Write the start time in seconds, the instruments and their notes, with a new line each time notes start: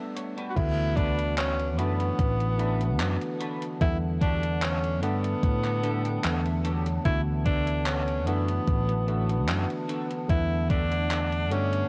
Already playing: ambient pad G3 F#5 A5, tine electric piano G3 A3 B3 D4 F#5, clean electric guitar E5
0.15 clean electric guitar C#5, muted clean electric guitar stroke, closed hi-hat
0.37 clean electric guitar D4 F#4 G4 B4, closed hi-hat
0.50 tenor saxophone F#4
0.55 fretless electric bass D2, tine electric piano D3 E3 A3 B3 F#4, tenor saxophone E4, ambient pad B4 F#5 A5, kick, closed hi-hat, crash
0.97 clean electric guitar D4 F#4 A4 B4, tenor saxophone D4, kick, closed hi-hat
1.19 closed hi-hat
1.38 tenor saxophone C#4, clap, closed hi-hat
1.60 closed hi-hat
1.72 tenor saxophone C#4
1.77 fretless electric bass F#2, tine electric piano E3 A3 B3 D4 F#4, tenor saxophone B3, clean electric guitar D4 F#4 A4 B4, closed hi-hat
2.00 closed hi-hat
2.19 fretless electric bass A1, kick, closed hi-hat
2.40 closed hi-hat
2.58 tine electric piano E3 A3 B3 D4 F#4, clean electric guitar D4 F#4 A4 B4, closed hi-hat
2.81 closed hi-hat
3.00 fretless electric bass F#2, clap, closed hi-hat
3.21 closed hi-hat
3.40 clean electric guitar D4 F#4 A4 B4, closed hi-hat
3.62 closed hi-hat
3.80 fretless electric bass E2, tine electric piano D3 G3 A3 B3 F#5, tenor saxophone E4, ambient pad A4 F#5, kick, closed hi-hat
4.21 clean electric guitar D4 F#4 G4 A4, tenor saxophone D4, kick, closed hi-hat
4.43 closed hi-hat
4.62 tenor saxophone C#4, clap, closed hi-hat
4.84 closed hi-hat
5.02 fretless electric bass G2, tine electric piano D3 G3 A3 B3 F#5, tenor saxophone B3, clean electric guitar D4 F#4 G4 A4, closed hi-hat
5.24 closed hi-hat
5.43 fretless electric bass A2, kick, closed hi-hat
5.65 clap, closed hi-hat
5.82 tine electric piano D3 G3 A3 B3, clean electric guitar D4 F#4 G4 A4 A5, closed hi-hat
6.05 clean electric guitar G5, closed hi-hat
6.24 fretless electric bass E2, clean electric guitar F#5, clap, closed hi-hat
6.46 clean electric guitar E5, closed hi-hat
6.64 clean electric guitar D4 F#4 G4 A4 C#5, closed hi-hat
6.86 closed hi-hat
7.04 fretless electric bass D2, tine electric piano D3 E3 A3 B3 F#4, tenor saxophone E4, ambient pad B4, kick, closed hi-hat
7.45 clean electric guitar D4 F#4 A4 B4, tenor saxophone D4, kick, closed hi-hat
7.67 closed hi-hat
7.86 tenor saxophone C#4, clap, closed hi-hat
8.08 closed hi-hat
8.26 fretless electric bass F#2, tine electric piano E3 A3 B3 D4 F#4, tenor saxophone B3, clean electric guitar D4 F#4 A4 B4, closed hi-hat
8.48 closed hi-hat
8.67 fretless electric bass A1, kick, closed hi-hat
8.89 closed hi-hat
9.06 tine electric piano E3 A3 B3 D4 F#4, clean electric guitar D4 F#4 A4 B4, closed hi-hat
9.29 closed hi-hat
9.49 fretless electric bass F#2, clap, closed hi-hat
9.70 closed hi-hat
9.88 clean electric guitar D4 F#4 A4 B4, closed hi-hat
10.11 closed hi-hat
10.28 fretless electric bass E2, tine electric piano D3 G3 A3 B3 F#5, tenor saxophone E4, ambient pad A4, kick, closed hi-hat
10.69 clean electric guitar D4 F#4 G4 A4, tenor saxophone D4, kick, closed hi-hat
10.92 closed hi-hat
11.11 clap, closed hi-hat
11.32 closed hi-hat
11.51 fretless electric bass G2, tine electric piano D3 G3 A3 B3 F#5, tenor saxophone C#4, clean electric guitar D4 F#4 G4 A4, closed hi-hat
11.73 closed hi-hat